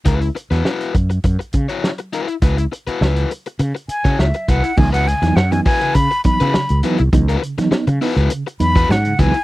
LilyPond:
<<
  \new Staff \with { instrumentName = "Flute" } { \time 4/4 \key cis \minor \tempo 4 = 102 r1 | r2 r8 gis''8 e''8 fis''8 | gis''16 fis''16 gis''8 fis''16 gis''16 gis''8 b''8 b''4 r8 | r2 r8 b''8 fis''8 gis''8 | }
  \new Staff \with { instrumentName = "Overdriven electric guitar" } { \time 4/4 \key cis \minor <e' fis' b'>16 r8 <e' fis' b'>16 <e' fis' b'>8 r4 r16 <e' fis' cis''>16 r8 <e' fis' b'>16 r16 | <e' fis' b'>16 r8 <e' fis' b'>16 <e' fis' b'>8 r4 r16 <e' fis' cis''>16 r8 <e' fis' b'>16 r16 | r16 <e' fis' b'>16 r4 <e' fis' b'>16 <e' fis' b'>16 r8. <e' fis' b'>16 r8 <e' fis' b'>16 r16 | r16 <e' fis' b'>16 r4 <e' fis' b'>16 <e' fis' b'>16 r8. <e' fis' b'>16 r8 <e' fis' b'>16 r16 | }
  \new Staff \with { instrumentName = "Reed electric piano" } { \clef bass \time 4/4 \key cis \minor r1 | r1 | <e fis b dis'>16 r16 cis16 <e fis b dis'>16 r16 <e fis b dis'>16 r16 cis16 r8 <e fis b dis'>16 r16 cis16 r16 <e fis b dis'>16 r16 | <e fis b dis'>16 r16 cis16 <e fis b dis'>16 dis'16 cis16 <b dis'>16 r16 cis16 r16 <e fis b dis'>16 r16 <b dis'>16 cis16 <e fis b dis'>16 r16 | }
  \new Staff \with { instrumentName = "Fretless electric bass" } { \clef bass \time 4/4 \key cis \minor cis,8 r16 e,16 r8 fis,8 fis,16 r16 cis16 r4 r16 | cis,8 r8 cis,8 r8 cis16 r8 cis16 cis,16 r16 bis,,16 r16 | cis,8. e,16 fis,8 r8 cis16 r8 cis16 r16 cis,16 r16 bis,,16 | cis,8 r8. cis16 r16 cis,16 r8 e,8 gis,8 cis,16 r16 | }
  \new DrumStaff \with { instrumentName = "Drums" } \drummode { \time 4/4 <hh bd>16 hh16 hh16 <hh sn>16 sn16 hh16 <hh bd>16 hh16 <hh bd>16 hh16 <hh bd>16 hh16 sn16 hh16 hh16 hh16 | <hh bd>16 hh16 hh16 hh16 sn16 hh16 hh16 hh16 hh16 hh16 hh16 <hh bd>16 sn16 hh16 <hh bd>16 hh16 | <cymc bd>16 hh16 hh16 <hh sn>16 sn16 hh16 <hho bd>16 hh16 <hh bd>16 hh16 <hh bd>16 hh16 sn16 hh16 hh16 hh16 | <hh bd>16 hh16 hh16 <hh sn>16 sn16 hh16 hho16 hh16 hh16 hh16 hh16 <hh bd>16 sn16 hh16 <hh bd>16 hh16 | }
>>